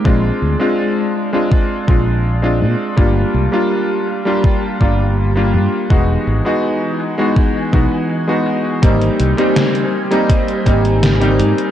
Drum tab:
HH |--x-x-x----xx-xx|-xxxxxxxxxxxx-xx|-xxxxxxxxxxxxxxx|xxxxxx-xxxxxxxxx|
SD |----------------|----------------|----------------|----o-------o---|
BD |o-------o-o-----|o-------o-o-----|o-------o-o-----|o-------o-o-----|